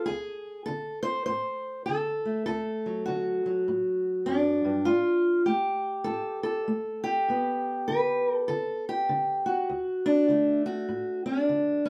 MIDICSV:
0, 0, Header, 1, 2, 480
1, 0, Start_track
1, 0, Tempo, 601202
1, 59, Time_signature, 4, 2, 24, 8
1, 9493, End_track
2, 0, Start_track
2, 0, Title_t, "Steel-string acoustic guitar"
2, 0, Program_c, 0, 25
2, 45, Note_on_c, 0, 68, 101
2, 71, Note_on_c, 0, 38, 65
2, 507, Note_off_c, 0, 38, 0
2, 521, Note_off_c, 0, 68, 0
2, 525, Note_on_c, 0, 69, 89
2, 545, Note_on_c, 0, 50, 54
2, 816, Note_off_c, 0, 69, 0
2, 819, Note_on_c, 0, 72, 103
2, 983, Note_off_c, 0, 50, 0
2, 995, Note_off_c, 0, 72, 0
2, 1004, Note_on_c, 0, 72, 98
2, 1024, Note_on_c, 0, 45, 57
2, 1463, Note_off_c, 0, 45, 0
2, 1479, Note_off_c, 0, 72, 0
2, 1483, Note_on_c, 0, 69, 93
2, 1507, Note_on_c, 0, 50, 62
2, 1800, Note_on_c, 0, 57, 45
2, 1944, Note_off_c, 0, 50, 0
2, 1953, Note_off_c, 0, 69, 0
2, 1963, Note_on_c, 0, 69, 95
2, 1975, Note_on_c, 0, 38, 69
2, 2283, Note_on_c, 0, 54, 44
2, 2418, Note_off_c, 0, 38, 0
2, 2436, Note_off_c, 0, 57, 0
2, 2440, Note_on_c, 0, 66, 80
2, 2459, Note_on_c, 0, 50, 59
2, 2751, Note_off_c, 0, 54, 0
2, 2761, Note_on_c, 0, 54, 45
2, 2899, Note_off_c, 0, 50, 0
2, 2928, Note_off_c, 0, 69, 0
2, 2938, Note_on_c, 0, 45, 56
2, 3379, Note_off_c, 0, 45, 0
2, 3401, Note_on_c, 0, 62, 80
2, 3414, Note_on_c, 0, 42, 57
2, 3706, Note_off_c, 0, 42, 0
2, 3709, Note_on_c, 0, 43, 58
2, 3871, Note_off_c, 0, 66, 0
2, 3875, Note_on_c, 0, 65, 89
2, 3887, Note_off_c, 0, 62, 0
2, 3892, Note_off_c, 0, 43, 0
2, 3893, Note_on_c, 0, 45, 65
2, 3898, Note_off_c, 0, 54, 0
2, 4337, Note_off_c, 0, 45, 0
2, 4355, Note_off_c, 0, 65, 0
2, 4358, Note_on_c, 0, 67, 79
2, 4372, Note_on_c, 0, 57, 56
2, 4817, Note_off_c, 0, 57, 0
2, 4825, Note_on_c, 0, 69, 90
2, 4843, Note_on_c, 0, 45, 60
2, 5127, Note_off_c, 0, 69, 0
2, 5136, Note_on_c, 0, 69, 88
2, 5293, Note_off_c, 0, 45, 0
2, 5327, Note_off_c, 0, 67, 0
2, 5331, Note_on_c, 0, 57, 60
2, 5618, Note_on_c, 0, 67, 95
2, 5777, Note_off_c, 0, 57, 0
2, 5807, Note_off_c, 0, 69, 0
2, 5816, Note_on_c, 0, 43, 65
2, 5825, Note_on_c, 0, 59, 40
2, 6260, Note_off_c, 0, 43, 0
2, 6289, Note_on_c, 0, 71, 85
2, 6296, Note_on_c, 0, 50, 53
2, 6664, Note_off_c, 0, 71, 0
2, 6664, Note_on_c, 0, 69, 85
2, 6740, Note_off_c, 0, 50, 0
2, 6767, Note_off_c, 0, 69, 0
2, 6768, Note_off_c, 0, 67, 0
2, 6770, Note_on_c, 0, 69, 90
2, 6779, Note_on_c, 0, 50, 61
2, 7093, Note_off_c, 0, 69, 0
2, 7096, Note_on_c, 0, 67, 85
2, 7222, Note_off_c, 0, 50, 0
2, 7259, Note_on_c, 0, 50, 68
2, 7552, Note_on_c, 0, 66, 85
2, 7702, Note_off_c, 0, 50, 0
2, 7721, Note_off_c, 0, 59, 0
2, 7737, Note_off_c, 0, 67, 0
2, 7741, Note_on_c, 0, 38, 68
2, 8030, Note_on_c, 0, 62, 86
2, 8183, Note_off_c, 0, 38, 0
2, 8212, Note_on_c, 0, 50, 60
2, 8216, Note_off_c, 0, 66, 0
2, 8223, Note_on_c, 0, 57, 47
2, 8506, Note_off_c, 0, 62, 0
2, 8509, Note_on_c, 0, 66, 88
2, 8659, Note_off_c, 0, 50, 0
2, 8691, Note_on_c, 0, 45, 61
2, 8985, Note_off_c, 0, 66, 0
2, 8988, Note_on_c, 0, 62, 88
2, 9139, Note_off_c, 0, 45, 0
2, 9175, Note_on_c, 0, 50, 61
2, 9462, Note_off_c, 0, 57, 0
2, 9465, Note_on_c, 0, 61, 73
2, 9493, Note_off_c, 0, 50, 0
2, 9493, Note_off_c, 0, 61, 0
2, 9493, Note_off_c, 0, 62, 0
2, 9493, End_track
0, 0, End_of_file